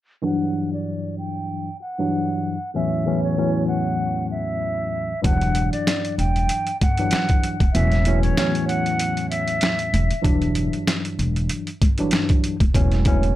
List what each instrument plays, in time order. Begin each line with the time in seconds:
0.22 tine electric piano G2 E3 F#3 D4, flute F#5
0.73 flute D5
1.18 flute G5
1.81 flute F#5
1.98 tine electric piano G2 E3 F#3 D4
2.74 tine electric piano E2 A2 E3 F#3 C#4, flute E5
3.05 tine electric piano E2 A2 E3 F#3 C#4
3.24 flute C#5
3.37 tine electric piano E2 A2 E3 F#3 C#4
3.67 flute F#5
4.31 flute E5
5.22 upright bass E1, tine electric piano G2 E3 F#3 D4, flute F#5, kick, closed hi-hat
5.41 closed hi-hat
5.55 closed hi-hat
5.72 flute D5, closed hi-hat
5.87 snare, closed hi-hat
6.05 closed hi-hat
6.18 upright bass E1, flute G5, closed hi-hat
6.36 closed hi-hat
6.49 closed hi-hat
6.67 closed hi-hat
6.81 upright bass G1, flute F#5, kick, closed hi-hat
6.97 tine electric piano G2 E3 F#3 D4, closed hi-hat
7.11 snare, closed hi-hat
7.29 kick, closed hi-hat
7.43 closed hi-hat
7.60 upright bass D#1, kick, closed hi-hat
7.73 upright bass E1, tine electric piano E2 A2 E3 F#3 C#4, flute E5, closed hi-hat
7.92 snare, closed hi-hat
8.05 tine electric piano E2 A2 E3 F#3 C#4, closed hi-hat
8.23 flute C#5, closed hi-hat
8.37 tine electric piano E2 A2 E3 F#3 C#4, snare, closed hi-hat
8.55 closed hi-hat
8.68 flute F#5, closed hi-hat
8.86 closed hi-hat
8.99 closed hi-hat
9.17 closed hi-hat
9.30 flute E5, closed hi-hat
9.48 closed hi-hat
9.61 snare, closed hi-hat
9.79 closed hi-hat
9.94 upright bass E1, closed hi-hat
10.11 closed hi-hat
10.22 upright bass E1, tine electric piano G2 E3 F#3 D4, kick, closed hi-hat
10.42 closed hi-hat
10.55 closed hi-hat
10.73 closed hi-hat
10.87 snare, closed hi-hat
11.05 closed hi-hat
11.19 upright bass E1, closed hi-hat
11.36 closed hi-hat
11.49 closed hi-hat
11.67 closed hi-hat
11.82 upright bass G1, kick, closed hi-hat
11.98 tine electric piano G2 E3 F#3 D4, closed hi-hat
12.11 snare, closed hi-hat
12.29 kick, closed hi-hat
12.44 closed hi-hat
12.60 upright bass D#1, kick, closed hi-hat
12.74 upright bass E1, tine electric piano E2 A2 E3 F#3 C#4, kick, closed hi-hat
12.92 snare, closed hi-hat
13.05 tine electric piano E2 A2 E3 F#3 C#4, kick, closed hi-hat
13.23 closed hi-hat